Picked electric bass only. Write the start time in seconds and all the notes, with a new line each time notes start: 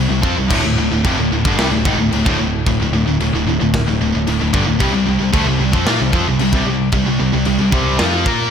0.09 C2
0.23 F2
0.39 C2
0.50 D1
0.65 D1
0.77 D1
0.91 D1
1.05 F1
1.18 D1
1.32 D1
1.45 G1
1.58 C2
1.72 D1
1.85 G#1
1.98 D1
2.12 D1
2.26 D1
2.39 D1
2.66 D1
2.80 D1
2.93 D1
3.06 D1
3.19 D1
3.34 D1
3.47 D1
3.61 D1
3.88 D1
4.01 D1
4.14 D1
4.28 D1
4.42 D1
4.54 G1
4.68 D1
4.81 C2
4.95 C2
5.07 C2
5.20 C2
5.34 D2
5.46 C2
5.59 C2
5.73 F2
5.86 A#2
6.01 C2
6.13 F2
6.26 C2
6.39 C2
6.53 C2
6.65 C2
6.93 C2
7.06 C2
7.20 C2
7.33 C2
7.47 C2
7.60 C2
7.72 C2
8.00 F2
8.26 A#2